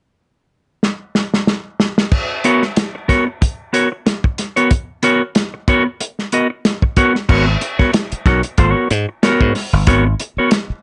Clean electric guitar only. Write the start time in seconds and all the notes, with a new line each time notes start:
2.44 B3 F#4 A#4 C#5
2.95 muted clean electric guitar stroke
3.08 B3 F#4 A#4 C#5
3.27 muted clean electric guitar stroke
3.41 muted clean electric guitar stroke
3.73 B3 F#4 A#4 C#5
3.92 muted clean electric guitar stroke
4.06 muted clean electric guitar stroke
4.25 muted clean electric guitar stroke
4.56 B3 F#4 A#4 C#5
5.03 B3 F#4 A#4 C#5
5.54 muted clean electric guitar stroke
5.68 B3 F#4 A#4 C#5
5.85 muted clean electric guitar stroke
6.01 muted clean electric guitar stroke
6.33 B3 F#4 A#4 D#5
6.50 muted clean electric guitar stroke
6.83 muted clean electric guitar stroke
6.97 B3 F#4 A#4 C#5
7.15 muted clean electric guitar stroke
7.29 B3 F#4 A#4 C#5
7.47 muted clean electric guitar stroke
7.61 muted clean electric guitar stroke
7.79 B3 F#4 A#4 C#5
7.93 muted clean electric guitar stroke
8.26 B3 F#4 A#4 C#5
8.44 muted clean electric guitar stroke
8.58 A#3 F4 A4 C5
8.71 B3 F#4 A#4 C#5
8.90 muted clean electric guitar stroke
9.09 muted clean electric guitar stroke
9.23 B3 F#4 A#4 C#5
9.55 muted clean electric guitar stroke
9.74 muted clean electric guitar stroke
9.87 B3 F#4 A#4 C#5
10.07 muted clean electric guitar stroke
10.20 muted clean electric guitar stroke
10.38 B3 F#4 A#4 C#5
10.53 muted clean electric guitar stroke